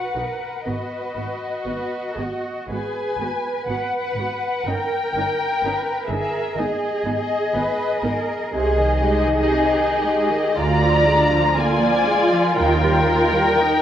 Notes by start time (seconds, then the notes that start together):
Already playing: F#4 B4 F#5
0.15 B1 D#4 F#4 A#4
0.64 G#1 B3 F#4 B4 D#5
1.16 G#1 B3 F#4
1.65 G#1 B3 F#4 B4
2.17 G#1 B3 F#4
2.68 G#1 B3 F#4 G#4 B4 G#5
3.17 G#1 F#4
3.21 B3 B4
3.66 G#1 B3 F#4 B4 F#5
4.14 G#1
4.19 B3 F#4
4.65 G1 C#4 D#4 A#4 G5
5.13 G1 C#4 D#4 A#4
5.62 G1 C#4 D#4 B4
6.07 G1 C#4 D#4 G#4 A#4 E5
6.56 G#1 B3 D#4 G#4 D#5
7.04 G#1 B3 D#4
7.54 G#1 B3 D#4 B4
8.03 G#1 B3 D#4 A#4
8.52 C2 C3 D#4 G#4 D#5
8.77 D#3
9.02 G#3 G4
9.26 D#3
9.51 C3
9.76 D#3
10.03 G#3
10.30 D#3
10.56 D2 D3 F4 D5 A#5
10.82 F3
11.06 G#3 D4
11.31 F3
11.56 D3 A#3 D5 G#5
11.81 F3
12.05 G#3 F4
12.32 F3
12.55 D#2 D#3 A#4 G5
12.82 G3
13.08 D#3
13.33 G3
13.58 D#3 D#4